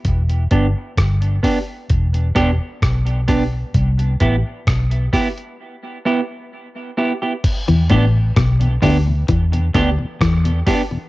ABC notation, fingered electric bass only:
X:1
M:4/4
L:1/16
Q:1/4=65
K:Em
V:1 name="Fingered electric bass" clef=bass
E,,,2 G,,, z G,,,2 z2 E,,,2 E,,, z B,,,4 | C,,2 A,,, z B,,,2 z8 z2 | z E,, A,,,2 B,,,2 D,,2 E,,2 D,, z E,,2 z2 |]